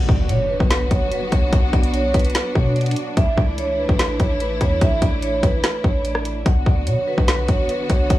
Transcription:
Already playing: F#3 B3 D4 F#4, impact
0.09 D2 D5, kick
0.29 B2 C#5, closed hi-hat
0.50 B4
0.60 B1, kick
0.70 B4, snare, closed hi-hat
0.91 A1 C#5, kick, closed hi-hat
1.11 B4, closed hi-hat
1.32 B1 C#5, kick, closed hi-hat
1.53 B1 F#5, kick, closed hi-hat
1.73 B1 D5, kick, closed hi-hat
1.83 closed hi-hat
1.94 C#5, closed hi-hat
2.14 B1 B4, kick, closed hi-hat
2.19 closed hi-hat
2.25 closed hi-hat
2.30 closed hi-hat
2.35 B4, snare, closed hi-hat
2.55 B2 C#5, kick
2.76 D5, closed hi-hat
2.81 closed hi-hat
2.86 closed hi-hat
2.91 closed hi-hat
2.96 closed hi-hat
3.17 A1 E3 A3 E4 E5, kick, closed hi-hat
3.38 C#2 D5, kick
3.58 C#5, closed hi-hat
3.79 B4
3.89 A1, kick
3.99 B4, snare, closed hi-hat
4.20 A1 C#5, kick, closed hi-hat
4.40 B4, closed hi-hat
4.61 E2 C#5, kick, closed hi-hat
4.81 A1 E5, kick, closed hi-hat
5.02 A1 D5, kick, closed hi-hat
5.22 C#5, closed hi-hat
5.43 A1 B4, kick, closed hi-hat
5.64 B4, cross-stick, snare, closed hi-hat
5.84 A1 C#5, kick
6.05 D5, closed hi-hat
6.15 cross-stick
6.25 closed hi-hat
6.46 B1 D3 F#3 B3 F#4 F#5, kick, closed hi-hat
6.66 D2 D5, kick
6.87 B2 C#5, closed hi-hat
7.07 B4
7.18 B1, kick
7.28 B4, snare, closed hi-hat
7.48 A1 C#5, kick, closed hi-hat
7.69 B4, closed hi-hat
7.89 B1 C#5, kick, closed hi-hat
8.10 B1 F#5, kick, closed hi-hat

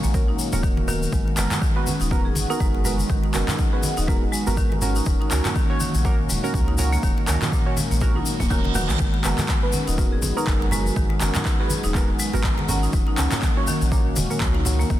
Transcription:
Already playing: D#3 F#3 A#3 C#4 F#4
0.03 A#1 A#3, muted conga, shaker
0.14 C#4 F#4 A#4, kick, high conga, shaker
0.28 D#4
0.39 muted conga, shaker
0.52 D#1 A#3 C#4 F#4 A#4, low conga, shaker
0.63 D#3, kick, shaker
0.77 muted conga, high conga
0.88 D#3 B3 F#4 A#4, low conga, shaker
1.03 shaker
1.12 G#1 D#3 G#3 B3, kick, shaker
1.27 muted conga
1.37 F#1 G#3 B3 F#4 A#4, clap, high conga, shaker
1.51 clap, high conga, low conga, shaker
1.62 D#3, kick, muted conga, shaker
1.76 B3 F#4 B4
1.86 C#4, high conga, shaker
2.00 D#1 D#4, muted conga, shaker
2.11 B3 F#4 A#4, kick, shaker
2.25 G#4
2.35 G#1, muted conga, high conga, shaker
2.50 B3 D#4 F#4 A#4, shaker
2.60 F#1 G#3, kick, high conga, shaker
2.75 muted conga
2.84 G#3 B3 F#4 A#4, low conga, shaker
2.98 high conga, shaker
3.09 G#1 D#3, kick, shaker
3.23 muted conga
3.34 F#1 B3 C#4 F#4 A#4, clap, high conga, shaker
3.48 D#4, clap, high conga, low conga, shaker
3.59 kick, muted conga, shaker
3.73 B3 F#4 G#4 B4
3.83 high conga, shaker
3.97 D#1 D#4, muted conga, shaker
4.08 G#3 B3 F#4 A#4, kick, high conga, shaker
4.32 G#3, muted conga, shaker
4.47 G#1 B3 F#4 A#4, low conga, shaker
4.57 D#3, kick, shaker
4.72 muted conga, high conga
4.81 C#4 F#4 A#4, low conga, shaker
4.95 D#4, shaker
5.05 D#1 D#3 F#3 A#3 C#4, kick, shaker
5.21 D#4, muted conga
5.31 C#2 C#4 F#4 A#4, clap, high conga, shaker
5.45 A#3, clap, high conga, low conga, shaker
5.55 D#3, kick, muted conga, shaker
5.70 C#4 F#4 C#5
5.80 D#3, high conga, shaker
5.94 A#1, muted conga, shaker
6.05 A#2 C#4 F#4 A#4, kick, shaker
6.29 D#1 G#3, muted conga, high conga, shaker
6.43 A#3 C#4 F#4 A#4, shaker
6.54 C#2, kick, high conga, shaker
6.68 D#4, muted conga
6.78 C#4 F#4 A#4, low conga, shaker
6.93 A#3, high conga, shaker
7.03 D#1 D#3, kick, shaker
7.18 muted conga
7.28 C#2 D#3 C#4 F#4 A#4, clap, high conga, shaker
7.42 clap, high conga, low conga, shaker
7.52 A#2, kick, shaker
7.66 C#4 F#4 C#5
7.77 G#3, high conga, shaker
7.91 A#1 A#3, muted conga, shaker
8.01 C#4 F#4 A#4, kick, high tom, reverse cymbal, high conga, shaker
8.16 D#4, high tom
8.26 muted conga, shaker
8.40 D#1 A#3, kick, mid tom, low conga, shaker
8.50 D#3 C#4 F#4 A#4, kick, mid tom, shaker
8.64 muted conga, high conga
8.75 D#3 B3 F#4 A#4, mid tom, low conga, shaker
8.89 A#1, clap, mid tom, shaker
8.99 G#1 G#3 B3 F#4, kick, shaker
9.14 muted conga
9.24 F#1 G#3 B3 F#4 A#4, clap, high conga, shaker
9.38 clap, high conga, low conga, shaker
9.48 D#3, kick, clap, shaker
9.63 B3 F#4 B4
9.73 C#4, high conga, shaker
9.87 D#1 D#4, muted conga, shaker
9.98 B3 F#4 A#4, kick, shaker
10.12 G#4
10.22 G#1, muted conga, high conga, shaker
10.37 B3 D#4 F#4 A#4, shaker
10.47 F#1 G#3, kick, clap, high conga, shaker
10.62 muted conga
10.71 G#3 B3 F#4 A#4, low conga, shaker
10.86 high conga, shaker
10.96 G#1 D#3, kick, shaker
11.10 muted conga
11.21 F#1 B3 C#4 F#4 A#4, clap, high conga, shaker
11.34 D#4, clap, high conga, low conga, shaker
11.45 kick, clap, muted conga, shaker
11.60 B3 F#4 G#4 B4
11.70 high conga, shaker
11.84 D#1 D#4, muted conga, shaker
11.94 G#3 B3 F#4 A#4, kick, clap, high conga, shaker
12.19 G#3, muted conga, shaker
12.33 G#1 B3 F#4 A#4, low conga, shaker
12.44 D#3, kick, clap, shaker
12.58 muted conga, high conga
12.69 C#4 F#4 A#4, low conga, shaker
12.83 D#4, shaker
12.93 D#1 D#3 A#3 C#4, kick, shaker
13.07 D#4, muted conga
13.18 C#2 C#4 F#4 A#4, clap, high conga, shaker
13.31 A#3, clap, high conga, low conga, shaker
13.42 D#3, kick, clap, shaker
13.57 C#4 F#4 C#5
13.67 D#3, high conga, shaker
13.81 A#1, muted conga, shaker
13.92 A#2 C#4 F#4 A#4, kick, shaker
14.16 D#1 G#3, muted conga, high conga, shaker
14.30 A#3 C#4 F#4 A#4, shaker
14.40 C#2, kick, clap, high conga, shaker
14.55 D#4, muted conga
14.65 C#4 F#4 A#4, low conga, shaker
14.79 A#3, high conga, shaker
14.90 D#1 D#3, kick, shaker

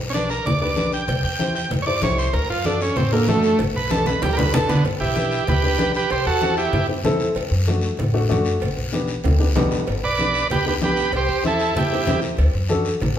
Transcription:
0.00 B1
0.10 C#4
0.14 D4 G4 B4, high conga, short guiro
0.30 A#4, short guiro
0.46 D2 D5, cowbell, high conga, low conga, long guiro
0.61 D4 G4 B4 D5
0.76 B1 D4 G4 B4, high conga, short guiro
0.93 G5, short guiro
1.08 C2, cowbell, high conga, low conga, long guiro
1.24 E2 G5
1.39 E4 G4 C5, high conga, short guiro
1.55 G5, short guiro
1.70 G2, cowbell, high conga, low conga, long guiro
1.82 E4 C#5
1.87 G4 C5 D5
2.02 C2 E4 G4 C5 C#5, high conga, low timbale, short guiro
2.18 C5, short guiro
2.33 D2 A#4, cowbell, high conga, long guiro
2.49 F#2 F4
2.65 D4 F#4 A4, high conga, short guiro
2.81 C#4, short guiro
2.96 A1 C4, cowbell, high conga, low conga, long guiro
3.12 A#3 D4 F#4 A4
3.27 F#2 A3 D4 F#4 A4, high conga, low timbale, short guiro
3.43 short guiro
3.59 G1, cowbell, high conga, low conga, long guiro
3.75 B1 B4
3.90 D4 G4 A4 B4, high conga, high timbale, short guiro
4.06 B4, high conga, high timbale, short guiro
4.22 D2 G4, cowbell, low conga, low timbale, long guiro
4.33 A#4
4.37 D4 G4 B4, low conga, low timbale
4.52 B1 D4 G4 A4 B4, low conga, short guiro
4.69 D3 B3, low conga, low timbale, short guiro
4.85 G1, cowbell, high conga, long guiro
5.00 B1 E4 G4
5.16 D4 G4 B4, high conga, short guiro
5.31 short guiro
5.47 D2 G4 B4, cowbell, high conga, low conga, long guiro
5.63 D4 G4 B4
5.78 B1 D4 G4 B4, high conga, low timbale, short guiro
5.95 G4 B4, short guiro
6.10 C2 G4 C5, cowbell, high conga, long guiro
6.26 E2 F#4 A4
6.41 C4 E4 G4, high conga, short guiro
6.57 E4 G4, short guiro
6.73 G2, cowbell, high conga, low conga, long guiro
6.88 C4 E4 G4
7.04 E2 C4 E4 A4, high conga, low conga, low timbale, short guiro
7.20 short guiro
7.35 D2, cowbell, high conga, long guiro
7.51 F#2
7.66 A3 D4 F#4, high conga, short guiro
7.82 short guiro
7.97 A1, cowbell, high conga, low conga, long guiro
8.13 A3 D4 F#4
8.29 F#2 A3 D4 F#4, high conga, short guiro
8.45 short guiro
8.60 G1, cowbell, high conga, low conga, long guiro
8.77 B1
8.92 B3 D4 G4, high conga, short guiro
9.08 short guiro
9.24 D2, cowbell, high conga, low conga, high timbale, long guiro
9.39 B3 D4 G4
9.55 B1 B3 D4 G4, high conga, low conga, low timbale, short guiro
9.71 low timbale, short guiro
9.87 G1, cowbell, high conga, long guiro
10.03 B1 B4 D5
10.18 B3 D4 G4, high conga, short guiro
10.34 short guiro
10.50 D2 G4 B4, cowbell, high conga, low conga, long guiro
10.66 B3 D4 G4 B4
10.81 B1 B3 D4 G4, high conga, low timbale, short guiro
10.85 B4
10.96 short guiro
11.12 C2 G4, cowbell, high conga, long guiro
11.17 C5
11.29 E2
11.43 C4 E4 G4, high conga, short guiro
11.47 A4
11.59 short guiro
11.75 G2 E4 G4, cowbell, high conga, low conga, long guiro
11.92 C4 E4 G4
12.06 E2 C4 E4 G4, high conga, low conga, low timbale, short guiro
12.22 short guiro
12.37 D2, cowbell, high conga, long guiro
12.54 F#2
12.68 D4 F#4 A4, high conga, short guiro
12.85 short guiro
13.00 A1, cowbell, high conga, low conga, long guiro

